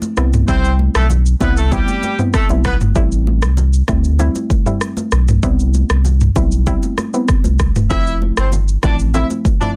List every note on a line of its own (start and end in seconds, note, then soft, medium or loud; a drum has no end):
0.02 high conga medium
0.02 shaker medium
0.17 0.44 C2 medium
0.17 0.46 G3 loud
0.17 0.46 B3 medium
0.17 0.46 C4 medium
0.17 0.46 E4 loud
0.17 cross-stick medium
0.17 shaker medium
0.33 mid tom medium
0.33 high conga medium
0.33 shaker medium
0.48 0.89 C2 loud
0.48 1.05 G3 medium
0.48 0.73 C4 loud
0.48 1.05 C4 medium
0.48 1.05 E4 loud
0.48 0.73 C5 loud
0.48 kick loud
0.48 shaker medium
0.65 shaker medium
0.79 high conga medium
0.95 1.35 B1 medium
0.95 1.07 A3 medium
0.95 1.07 A4 medium
0.95 cross-stick loud
0.95 shaker soft
1.10 low conga medium
1.10 shaker medium
1.26 shaker soft
1.40 1.82 C2 medium
1.40 1.56 G3 medium
1.40 1.54 B3 medium
1.40 1.56 B3 medium
1.40 1.56 C4 medium
1.40 1.56 E4 medium
1.40 1.54 B4 loud
1.40 kick medium
1.40 high conga medium
1.40 low conga medium
1.40 shaker medium
1.57 1.69 A3 medium
1.57 1.69 A4 medium
1.57 shaker medium
1.72 1.87 G3 medium
1.72 2.16 G3 loud
1.72 1.87 B3 medium
1.72 1.87 C4 medium
1.72 1.87 E4 loud
1.72 2.16 G4 loud
1.72 kick medium
1.72 low conga medium
1.72 shaker medium
1.88 high conga medium
1.88 shaker medium
2.03 high conga medium
2.03 shaker medium
2.19 2.33 G3 medium
2.19 2.33 B3 medium
2.19 2.33 C4 medium
2.19 2.33 E4 medium
2.19 mid tom medium
2.19 shaker medium
2.34 2.47 A3 medium
2.34 2.47 A4 loud
2.34 kick loud
2.34 cross-stick loud
2.34 shaker medium
2.49 2.77 B1 medium
2.49 2.64 G3 medium
2.49 2.64 B3 medium
2.49 2.64 C4 medium
2.49 2.64 E4 medium
2.49 high conga medium
2.49 shaker medium
2.64 2.75 B3 medium
2.64 2.75 B4 loud
2.64 kick medium
2.64 cross-stick medium
2.64 shaker medium
2.81 2.94 G1 medium
2.81 mid tom medium
2.81 high conga medium
2.81 shaker medium
2.95 3.44 A1 loud
2.95 3.53 G3 medium
2.95 3.53 A3 medium
2.95 3.53 C4 medium
2.95 3.53 E4 loud
2.95 kick loud
2.95 shaker medium
3.12 shaker medium
3.27 high conga medium
3.42 3.82 C2 medium
3.42 cross-stick loud
3.42 shaker medium
3.57 low conga medium
3.57 shaker medium
3.73 shaker soft
3.88 4.29 D2 loud
3.88 4.03 G3 medium
3.88 4.03 A3 medium
3.88 4.04 C4 medium
3.88 4.04 E4 medium
3.88 kick loud
3.88 cross-stick medium
3.88 high conga medium
3.88 low conga medium
3.88 shaker medium
4.04 shaker medium
4.19 4.34 G3 medium
4.19 4.34 A3 medium
4.19 4.34 C4 medium
4.19 4.35 E4 loud
4.19 low conga medium
4.19 shaker medium
4.35 high conga medium
4.35 shaker soft
4.50 kick medium
4.50 high conga medium
4.50 shaker medium
4.66 4.80 G3 medium
4.66 4.80 A3 medium
4.66 4.80 C4 medium
4.66 4.80 E4 medium
4.66 mid tom medium
4.66 shaker medium
4.81 cross-stick medium
4.81 shaker medium
4.97 high conga medium
4.97 shaker medium
5.12 5.39 B1 medium
5.12 cross-stick medium
5.12 shaker medium
5.28 mid tom medium
5.28 high conga medium
5.28 shaker medium
5.43 5.84 C2 loud
5.43 6.00 G3 medium
5.43 6.00 B3 medium
5.43 6.00 C4 medium
5.43 6.00 E4 loud
5.43 kick loud
5.43 shaker medium
5.59 shaker medium
5.74 high conga medium
5.74 shaker medium
5.90 6.30 C2 medium
5.90 cross-stick loud
5.90 shaker medium
6.05 low conga medium
6.05 shaker medium
6.21 mid tom medium
6.21 shaker soft
6.36 6.77 B1 loud
6.36 6.51 G3 medium
6.36 6.51 B3 medium
6.36 6.51 C4 medium
6.36 6.51 E4 medium
6.36 kick loud
6.36 high conga medium
6.36 low conga medium
6.36 shaker medium
6.52 shaker medium
6.67 6.82 G3 medium
6.67 6.82 B3 medium
6.67 6.82 C4 medium
6.67 6.82 E4 loud
6.67 kick medium
6.67 low conga medium
6.67 shaker medium
6.83 high conga medium
6.83 shaker medium
6.98 cross-stick medium
6.98 high conga medium
6.98 shaker medium
7.14 7.28 G3 medium
7.14 7.28 B3 medium
7.14 7.28 C4 medium
7.14 7.28 E4 medium
7.14 shaker medium
7.28 kick loud
7.28 cross-stick medium
7.28 shaker medium
7.44 7.72 C2 medium
7.44 high conga medium
7.44 shaker medium
7.59 kick medium
7.59 cross-stick medium
7.59 shaker medium
7.76 7.88 E1 medium
7.76 mid tom medium
7.76 high conga medium
7.76 shaker medium
7.90 8.31 F1 loud
7.90 8.48 F3 loud
7.90 8.48 A3 medium
7.90 8.48 C4 medium
7.90 8.15 E4 loud
7.90 8.48 E4 loud
7.90 8.15 E5 loud
7.90 kick loud
7.90 shaker medium
8.07 shaker medium
8.22 high conga medium
8.37 8.77 G1 medium
8.37 8.50 C4 medium
8.37 8.50 C5 medium
8.37 cross-stick loud
8.37 shaker medium
8.52 low conga medium
8.52 shaker medium
8.68 shaker soft
8.83 9.24 A1 loud
8.83 8.98 F3 medium
8.83 8.98 A3 medium
8.83 8.98 C4 medium
8.83 8.96 D4 medium
8.83 8.99 E4 medium
8.83 8.96 D5 loud
8.83 kick loud
8.83 cross-stick medium
8.83 high conga medium
8.83 low conga medium
8.83 shaker medium
8.99 shaker medium
9.14 9.29 F3 medium
9.14 9.29 A3 medium
9.14 9.29 C4 medium
9.14 9.27 E4 medium
9.14 9.30 E4 loud
9.14 9.27 E5 loud
9.14 low conga medium
9.14 shaker medium
9.30 high conga medium
9.30 shaker medium
9.45 kick loud
9.45 high conga medium
9.45 shaker medium
9.61 9.75 F3 medium
9.61 9.75 A3 medium
9.61 9.75 C4 medium
9.61 9.70 D4 medium
9.61 9.75 E4 medium
9.61 9.70 D5 medium
9.61 mid tom medium
9.61 shaker medium